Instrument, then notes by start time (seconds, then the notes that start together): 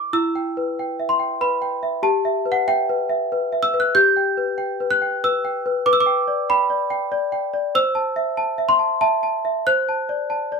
celesta
Already playing: E4 B4 E5 G5 D6
0.13 E4 E6
0.35 G5
0.57 B4
0.79 G5
0.99 E5
1.09 C6
1.20 G5
1.41 B4 B5
1.62 G5
1.83 E5
2.03 G4 A5
2.25 E5
2.45 B4
2.52 F#5
2.68 E5 G5
2.89 B4
3.09 E5
3.32 B4
3.52 E5
3.63 E6
3.74 B4
3.80 F#6
3.95 G4 G6
4.17 G5
4.37 B4
4.58 G5
4.80 B4
4.91 F#6
5.02 G5
5.24 B4 E6
5.45 G5
5.66 B4
5.86 B4 D6
5.93 E6
6.00 D6
6.06 G5
6.28 D5
6.49 G5 B5
6.70 D5
6.90 G5
7.12 D5
7.32 G5
7.54 D5
7.75 C5 E6
7.95 A5
8.16 E5
8.37 A5
8.58 E5
8.69 C6
8.79 A5
9.01 E5 A5
9.23 A5
9.45 E5
9.67 C5 F#6
9.89 A5
10.09 D5
10.30 A5
10.52 D5